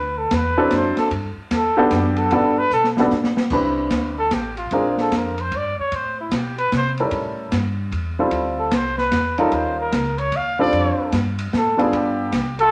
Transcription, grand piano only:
0, 0, Header, 1, 2, 480
1, 0, Start_track
1, 0, Key_signature, 1, "major"
1, 0, Tempo, 400802
1, 1335, Time_signature, 3, 2, 24, 8
1, 4214, Key_signature, 0, "major"
1, 15225, End_track
2, 0, Start_track
2, 0, Title_t, "Grand piano"
2, 0, Program_c, 0, 0
2, 689, Note_on_c, 0, 54, 80
2, 689, Note_on_c, 0, 60, 76
2, 690, Note_on_c, 0, 62, 73
2, 690, Note_on_c, 0, 64, 72
2, 694, Note_on_c, 0, 69, 91
2, 1303, Note_off_c, 0, 54, 0
2, 1303, Note_off_c, 0, 60, 0
2, 1303, Note_off_c, 0, 62, 0
2, 1304, Note_off_c, 0, 64, 0
2, 1305, Note_off_c, 0, 69, 0
2, 2118, Note_on_c, 0, 67, 84
2, 2124, Note_on_c, 0, 62, 80
2, 2129, Note_on_c, 0, 59, 77
2, 2137, Note_on_c, 0, 66, 81
2, 2137, Note_on_c, 0, 69, 95
2, 2737, Note_off_c, 0, 67, 0
2, 2740, Note_off_c, 0, 62, 0
2, 2743, Note_off_c, 0, 59, 0
2, 2747, Note_off_c, 0, 66, 0
2, 2747, Note_off_c, 0, 69, 0
2, 2782, Note_on_c, 0, 55, 69
2, 2782, Note_on_c, 0, 59, 63
2, 2783, Note_on_c, 0, 69, 73
2, 2784, Note_on_c, 0, 62, 61
2, 2784, Note_on_c, 0, 66, 67
2, 3058, Note_off_c, 0, 55, 0
2, 3058, Note_off_c, 0, 59, 0
2, 3058, Note_off_c, 0, 69, 0
2, 3059, Note_off_c, 0, 62, 0
2, 3059, Note_off_c, 0, 66, 0
2, 3573, Note_on_c, 0, 55, 78
2, 3586, Note_on_c, 0, 59, 72
2, 3593, Note_on_c, 0, 62, 70
2, 3594, Note_on_c, 0, 69, 82
2, 3596, Note_on_c, 0, 66, 75
2, 3722, Note_off_c, 0, 55, 0
2, 3728, Note_off_c, 0, 59, 0
2, 3731, Note_off_c, 0, 62, 0
2, 3732, Note_off_c, 0, 69, 0
2, 3733, Note_off_c, 0, 66, 0
2, 4215, Note_on_c, 0, 55, 63
2, 4220, Note_on_c, 0, 60, 56
2, 4227, Note_on_c, 0, 64, 59
2, 4229, Note_on_c, 0, 71, 68
2, 4231, Note_on_c, 0, 62, 61
2, 4943, Note_off_c, 0, 55, 0
2, 4946, Note_off_c, 0, 60, 0
2, 4949, Note_off_c, 0, 64, 0
2, 4950, Note_off_c, 0, 71, 0
2, 4951, Note_off_c, 0, 62, 0
2, 5654, Note_on_c, 0, 56, 61
2, 5661, Note_on_c, 0, 60, 61
2, 5664, Note_on_c, 0, 65, 55
2, 5667, Note_on_c, 0, 70, 71
2, 5668, Note_on_c, 0, 62, 54
2, 6382, Note_off_c, 0, 56, 0
2, 6386, Note_off_c, 0, 60, 0
2, 6388, Note_off_c, 0, 65, 0
2, 6389, Note_off_c, 0, 70, 0
2, 6390, Note_off_c, 0, 62, 0
2, 8383, Note_on_c, 0, 70, 59
2, 8385, Note_on_c, 0, 61, 58
2, 8386, Note_on_c, 0, 55, 64
2, 8390, Note_on_c, 0, 64, 57
2, 8390, Note_on_c, 0, 69, 71
2, 8989, Note_off_c, 0, 70, 0
2, 8990, Note_off_c, 0, 55, 0
2, 8990, Note_off_c, 0, 61, 0
2, 8993, Note_off_c, 0, 64, 0
2, 8993, Note_off_c, 0, 69, 0
2, 9809, Note_on_c, 0, 55, 68
2, 9810, Note_on_c, 0, 60, 61
2, 9813, Note_on_c, 0, 64, 57
2, 9816, Note_on_c, 0, 65, 60
2, 9821, Note_on_c, 0, 69, 68
2, 10422, Note_off_c, 0, 55, 0
2, 10422, Note_off_c, 0, 60, 0
2, 10424, Note_off_c, 0, 64, 0
2, 10425, Note_off_c, 0, 65, 0
2, 10428, Note_off_c, 0, 69, 0
2, 11238, Note_on_c, 0, 61, 66
2, 11239, Note_on_c, 0, 55, 71
2, 11244, Note_on_c, 0, 63, 68
2, 11245, Note_on_c, 0, 65, 71
2, 11254, Note_on_c, 0, 70, 83
2, 11856, Note_off_c, 0, 55, 0
2, 11856, Note_off_c, 0, 61, 0
2, 11859, Note_off_c, 0, 63, 0
2, 11859, Note_off_c, 0, 65, 0
2, 11864, Note_off_c, 0, 70, 0
2, 12683, Note_on_c, 0, 55, 68
2, 12683, Note_on_c, 0, 65, 63
2, 12684, Note_on_c, 0, 60, 67
2, 12686, Note_on_c, 0, 62, 66
2, 12693, Note_on_c, 0, 69, 77
2, 13298, Note_off_c, 0, 55, 0
2, 13298, Note_off_c, 0, 65, 0
2, 13299, Note_off_c, 0, 60, 0
2, 13300, Note_off_c, 0, 62, 0
2, 13304, Note_off_c, 0, 69, 0
2, 14100, Note_on_c, 0, 55, 66
2, 14109, Note_on_c, 0, 65, 60
2, 14111, Note_on_c, 0, 62, 61
2, 14114, Note_on_c, 0, 59, 60
2, 14117, Note_on_c, 0, 69, 74
2, 14727, Note_off_c, 0, 55, 0
2, 14732, Note_off_c, 0, 62, 0
2, 14732, Note_off_c, 0, 65, 0
2, 14734, Note_off_c, 0, 59, 0
2, 14735, Note_off_c, 0, 69, 0
2, 15225, End_track
0, 0, End_of_file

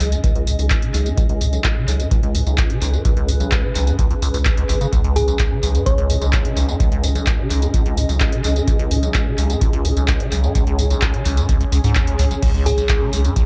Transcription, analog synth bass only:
0, 0, Header, 1, 2, 480
1, 0, Start_track
1, 0, Tempo, 468750
1, 1204, Time_signature, 4, 2, 24, 8
1, 13780, End_track
2, 0, Start_track
2, 0, Title_t, "Analog synth bass"
2, 0, Program_c, 0, 38
2, 3, Note_on_c, 0, 37, 102
2, 177, Note_off_c, 0, 37, 0
2, 485, Note_on_c, 0, 37, 93
2, 571, Note_off_c, 0, 37, 0
2, 604, Note_on_c, 0, 37, 96
2, 777, Note_off_c, 0, 37, 0
2, 964, Note_on_c, 0, 37, 90
2, 1137, Note_off_c, 0, 37, 0
2, 1443, Note_on_c, 0, 37, 97
2, 1617, Note_off_c, 0, 37, 0
2, 1923, Note_on_c, 0, 37, 97
2, 2097, Note_off_c, 0, 37, 0
2, 2404, Note_on_c, 0, 37, 95
2, 2491, Note_off_c, 0, 37, 0
2, 2523, Note_on_c, 0, 37, 93
2, 2696, Note_off_c, 0, 37, 0
2, 2883, Note_on_c, 0, 37, 88
2, 3057, Note_off_c, 0, 37, 0
2, 3363, Note_on_c, 0, 37, 100
2, 3537, Note_off_c, 0, 37, 0
2, 3843, Note_on_c, 0, 37, 97
2, 4017, Note_off_c, 0, 37, 0
2, 4323, Note_on_c, 0, 37, 84
2, 4411, Note_off_c, 0, 37, 0
2, 4444, Note_on_c, 0, 37, 87
2, 4617, Note_off_c, 0, 37, 0
2, 4803, Note_on_c, 0, 32, 89
2, 4977, Note_off_c, 0, 32, 0
2, 5283, Note_on_c, 0, 37, 99
2, 5457, Note_off_c, 0, 37, 0
2, 5764, Note_on_c, 0, 37, 99
2, 5937, Note_off_c, 0, 37, 0
2, 6243, Note_on_c, 0, 37, 99
2, 6330, Note_off_c, 0, 37, 0
2, 6363, Note_on_c, 0, 37, 94
2, 6536, Note_off_c, 0, 37, 0
2, 6722, Note_on_c, 0, 37, 90
2, 6896, Note_off_c, 0, 37, 0
2, 7203, Note_on_c, 0, 37, 94
2, 7376, Note_off_c, 0, 37, 0
2, 7684, Note_on_c, 0, 37, 97
2, 7857, Note_off_c, 0, 37, 0
2, 8164, Note_on_c, 0, 37, 97
2, 8251, Note_off_c, 0, 37, 0
2, 8285, Note_on_c, 0, 37, 95
2, 8457, Note_off_c, 0, 37, 0
2, 8645, Note_on_c, 0, 37, 89
2, 8818, Note_off_c, 0, 37, 0
2, 9125, Note_on_c, 0, 37, 97
2, 9298, Note_off_c, 0, 37, 0
2, 9605, Note_on_c, 0, 37, 99
2, 9778, Note_off_c, 0, 37, 0
2, 10085, Note_on_c, 0, 37, 102
2, 10172, Note_off_c, 0, 37, 0
2, 10204, Note_on_c, 0, 37, 100
2, 10377, Note_off_c, 0, 37, 0
2, 10563, Note_on_c, 0, 37, 93
2, 10737, Note_off_c, 0, 37, 0
2, 11045, Note_on_c, 0, 37, 97
2, 11218, Note_off_c, 0, 37, 0
2, 11525, Note_on_c, 0, 37, 95
2, 11698, Note_off_c, 0, 37, 0
2, 12004, Note_on_c, 0, 37, 100
2, 12091, Note_off_c, 0, 37, 0
2, 12125, Note_on_c, 0, 37, 94
2, 12297, Note_off_c, 0, 37, 0
2, 12484, Note_on_c, 0, 37, 103
2, 12657, Note_off_c, 0, 37, 0
2, 12963, Note_on_c, 0, 37, 104
2, 13136, Note_off_c, 0, 37, 0
2, 13442, Note_on_c, 0, 37, 97
2, 13616, Note_off_c, 0, 37, 0
2, 13780, End_track
0, 0, End_of_file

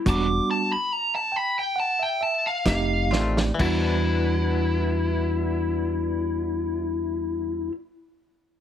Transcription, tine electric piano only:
0, 0, Header, 1, 2, 480
1, 0, Start_track
1, 0, Key_signature, 1, "minor"
1, 0, Tempo, 848656
1, 33, Time_signature, 4, 2, 24, 8
1, 994, Tempo, 898204
1, 1474, Tempo, 956938
1, 4457, End_track
2, 0, Start_track
2, 0, Title_t, "Tine electric piano"
2, 0, Program_c, 0, 4
2, 30, Note_on_c, 0, 55, 83
2, 33, Note_on_c, 0, 59, 76
2, 33, Note_on_c, 0, 62, 87
2, 34, Note_on_c, 0, 66, 103
2, 413, Note_off_c, 0, 55, 0
2, 414, Note_off_c, 0, 59, 0
2, 414, Note_off_c, 0, 62, 0
2, 415, Note_off_c, 0, 66, 0
2, 747, Note_on_c, 0, 79, 70
2, 888, Note_off_c, 0, 79, 0
2, 994, Note_on_c, 0, 78, 68
2, 1120, Note_on_c, 0, 76, 59
2, 1130, Note_off_c, 0, 78, 0
2, 1228, Note_off_c, 0, 76, 0
2, 1235, Note_on_c, 0, 76, 65
2, 1372, Note_off_c, 0, 76, 0
2, 1473, Note_on_c, 0, 57, 84
2, 1475, Note_on_c, 0, 60, 78
2, 1475, Note_on_c, 0, 75, 68
2, 1477, Note_on_c, 0, 63, 88
2, 1477, Note_on_c, 0, 67, 95
2, 1691, Note_off_c, 0, 75, 0
2, 1708, Note_on_c, 0, 74, 70
2, 1905, Note_off_c, 0, 57, 0
2, 1905, Note_off_c, 0, 60, 0
2, 1906, Note_off_c, 0, 63, 0
2, 1907, Note_off_c, 0, 67, 0
2, 1929, Note_off_c, 0, 74, 0
2, 1936, Note_on_c, 0, 55, 73
2, 1943, Note_on_c, 0, 59, 69
2, 1950, Note_on_c, 0, 62, 74
2, 1957, Note_on_c, 0, 66, 83
2, 3991, Note_off_c, 0, 55, 0
2, 3999, Note_off_c, 0, 59, 0
2, 4005, Note_off_c, 0, 62, 0
2, 4012, Note_off_c, 0, 66, 0
2, 4457, End_track
0, 0, End_of_file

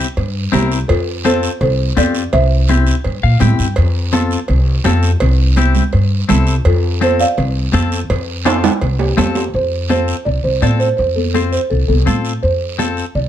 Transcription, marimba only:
0, 0, Header, 1, 2, 480
1, 0, Start_track
1, 0, Key_signature, -1, "major"
1, 0, Tempo, 360577
1, 1187, Time_signature, 4, 2, 24, 8
1, 17688, End_track
2, 0, Start_track
2, 0, Title_t, "Marimba"
2, 0, Program_c, 0, 12
2, 1173, Note_on_c, 0, 69, 85
2, 1186, Note_on_c, 0, 65, 61
2, 1625, Note_off_c, 0, 69, 0
2, 1632, Note_off_c, 0, 65, 0
2, 1668, Note_on_c, 0, 72, 90
2, 1676, Note_on_c, 0, 69, 75
2, 2117, Note_off_c, 0, 69, 0
2, 2136, Note_off_c, 0, 72, 0
2, 2152, Note_on_c, 0, 72, 77
2, 2157, Note_on_c, 0, 69, 68
2, 2597, Note_off_c, 0, 69, 0
2, 2634, Note_on_c, 0, 74, 96
2, 2641, Note_on_c, 0, 69, 63
2, 2642, Note_off_c, 0, 72, 0
2, 3075, Note_off_c, 0, 74, 0
2, 3079, Note_off_c, 0, 69, 0
2, 3105, Note_on_c, 0, 76, 88
2, 3107, Note_on_c, 0, 72, 77
2, 3773, Note_off_c, 0, 76, 0
2, 3774, Note_off_c, 0, 72, 0
2, 8871, Note_on_c, 0, 65, 68
2, 8871, Note_on_c, 0, 69, 95
2, 9312, Note_off_c, 0, 65, 0
2, 9346, Note_off_c, 0, 69, 0
2, 9355, Note_on_c, 0, 72, 98
2, 9362, Note_on_c, 0, 69, 75
2, 9574, Note_off_c, 0, 69, 0
2, 9589, Note_on_c, 0, 77, 104
2, 9593, Note_on_c, 0, 74, 88
2, 9594, Note_off_c, 0, 72, 0
2, 12171, Note_off_c, 0, 77, 0
2, 12173, Note_off_c, 0, 74, 0
2, 12711, Note_on_c, 0, 72, 91
2, 13173, Note_off_c, 0, 72, 0
2, 13189, Note_on_c, 0, 72, 84
2, 13650, Note_on_c, 0, 74, 89
2, 13680, Note_off_c, 0, 72, 0
2, 13897, Note_on_c, 0, 72, 90
2, 13903, Note_off_c, 0, 74, 0
2, 14139, Note_on_c, 0, 74, 80
2, 14147, Note_off_c, 0, 72, 0
2, 14364, Note_off_c, 0, 74, 0
2, 14370, Note_on_c, 0, 72, 94
2, 14481, Note_off_c, 0, 72, 0
2, 14604, Note_on_c, 0, 72, 88
2, 14851, Note_on_c, 0, 69, 81
2, 14862, Note_off_c, 0, 72, 0
2, 14962, Note_off_c, 0, 69, 0
2, 15095, Note_on_c, 0, 69, 78
2, 15323, Note_off_c, 0, 69, 0
2, 15337, Note_on_c, 0, 72, 80
2, 15565, Note_off_c, 0, 72, 0
2, 15577, Note_on_c, 0, 69, 77
2, 15687, Note_off_c, 0, 69, 0
2, 15819, Note_on_c, 0, 69, 78
2, 16270, Note_off_c, 0, 69, 0
2, 16542, Note_on_c, 0, 72, 91
2, 17510, Note_on_c, 0, 74, 88
2, 17537, Note_off_c, 0, 72, 0
2, 17619, Note_off_c, 0, 74, 0
2, 17688, End_track
0, 0, End_of_file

